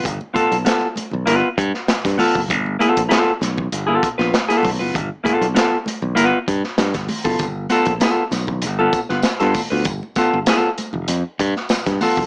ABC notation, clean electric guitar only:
X:1
M:4/4
L:1/16
Q:1/4=98
K:Gmix
V:1 name="Clean electric guitar"
z2 [B,FA] z [B,FA] z3 [B,FB] z4 z [B,FA] z | z2 [B,FA] z [B,FA] z4 [B,FA] z [B,FB] z [B,FA] z [B,FB] | z2 [B,FA] z [B,FA] z3 [B,FB] z6 [B,FA] | z2 [B,FA] z [B,FA] z4 [B,FA] z [B,FB] z [B,FA] z [B,FB] |
z2 [B,FA] z [B,FA] z8 z [B,FA] z |]